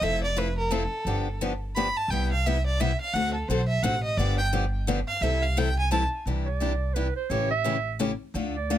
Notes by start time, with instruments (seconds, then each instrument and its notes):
0.01 upright bass F1, steel-string acoustic guitar F3 A3 C4 E4 A4, violin E5
0.24 violin D5
0.36 steel-string acoustic guitar F3 A3 C4 E4 A4, violin B4
0.58 violin A#4
0.71 steel-string acoustic guitar F3 A3 C4 E4 A4, violin A4
1.05 upright bass G1, steel-string acoustic guitar D3 F3 B3 D4 G4
1.41 steel-string acoustic guitar D3 F3 B3 D4 G4
1.76 steel-string acoustic guitar D3 F3 B3 D4 G4, violin B5
1.97 violin A5
2.08 upright bass C2, steel-string acoustic guitar C3, violin G5
2.12 steel-string acoustic guitar G3 B3 E4 G4
2.32 violin F5
2.46 steel-string acoustic guitar C3 G3 B3 E4 G4, violin E5
2.66 violin D5
2.80 steel-string acoustic guitar C3 G3 B3 E4 G4, violin E5
3.01 violin F5
3.13 upright bass D2, steel-string acoustic guitar D3 A3 C4 F#4 A4, violin F#5
3.34 violin A4
3.48 upright bass B1, steel-string acoustic guitar D3 A3 C4 F#4 A4, violin C5
3.68 violin E5
3.83 upright bass A1, steel-string acoustic guitar D3 A3 C4 F#4 A4, violin F#5
4.04 violin D#5
4.17 upright bass G1, steel-string acoustic guitar D3 F3 B3 D4 G4, violin D5
4.38 violin G5
4.53 steel-string acoustic guitar D3 F3 B3 D4 G4
4.87 steel-string acoustic guitar D3 F3 B3 D4 G4
5.08 violin F5
5.21 upright bass C2, steel-string acoustic guitar C3 E3 G3 C4 E4 A4, violin E5
5.43 violin F5
5.57 steel-string acoustic guitar C3 E3 G3 C4 E4 A4, violin G5
5.79 violin G#5
5.91 steel-string acoustic guitar C3 E3 G3 C4 E4 A4, violin A5
6.26 upright bass C2, steel-string acoustic guitar C3 E3 D4 G4
6.46 clarinet D5
6.60 steel-string acoustic guitar C3 E3 D4 G4
6.94 steel-string acoustic guitar C3 E3 D4 G4, clarinet B4
7.16 clarinet C5
7.30 upright bass A1, steel-string acoustic guitar C#3 E3 A3 C#4 G4, clarinet C#5
7.51 clarinet E5
7.64 steel-string acoustic guitar C#3 E3 A3 C#4 G4
7.99 steel-string acoustic guitar C#3 E3 A3 C#4 G4
8.34 upright bass D2, steel-string acoustic guitar D3 A3 D4 F4 A4
8.55 clarinet D5
8.70 steel-string acoustic guitar D3 A3 D4 F4 A4